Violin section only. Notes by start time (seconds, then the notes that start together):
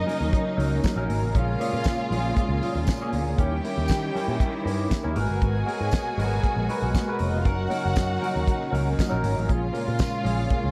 Already playing: D#4 D#5
1.35 F4 F5
3.39 G4 G5
5.18 G#4 G#5
7.12 B3 B4
7.20 C#4 C#5
7.29 D#4 D#5
7.37 F4 F5
7.45 F#4 F#5
9.49 F4 F5